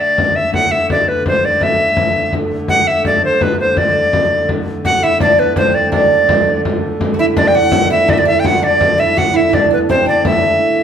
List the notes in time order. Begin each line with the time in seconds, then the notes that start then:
Already playing: D3 A3
0.00 D5, frame drum
0.18 frame drum
0.36 E5, frame drum
0.53 D3 A3 F#5, frame drum
0.71 E5
0.90 D5, frame drum
1.08 B4
1.26 C5, frame drum
1.45 D5
1.61 E5, frame drum
1.97 frame drum
2.33 frame drum
2.68 F#5, frame drum
2.87 E5
3.05 D5, frame drum
3.25 C5
3.41 B4, frame drum
3.60 C5
3.77 D5, frame drum
4.13 frame drum
4.49 frame drum
4.67 frame drum
4.84 D3 A3 F#4 F#5, frame drum
5.03 E4 E5
5.20 D4 D5, frame drum
5.39 B3 B4
5.56 C4 C5, frame drum
5.75 D5
5.92 D4 D5, frame drum
6.29 frame drum
6.65 frame drum
7.01 frame drum
7.14 F#4
7.19 E4 E5
7.37 D4 D5, frame drum
7.48 G5
7.55 F#4 F#5
7.72 F#4, frame drum
7.90 E4 E5
8.08 D4 D5, frame drum
8.13 E5
8.17 D4 D5
8.25 E4 E5
8.40 G5
8.45 F#4 F#5, frame drum
8.62 D4 D5, frame drum
8.81 frame drum
8.98 E4 E5, frame drum
9.16 D3 A3 F#4 F#5, frame drum
9.34 E4 E5
9.49 D4 E4, frame drum
9.54 D5
9.71 B3 B4
9.89 C4 C5, frame drum
10.06 D4 D5
10.25 E4 E5, frame drum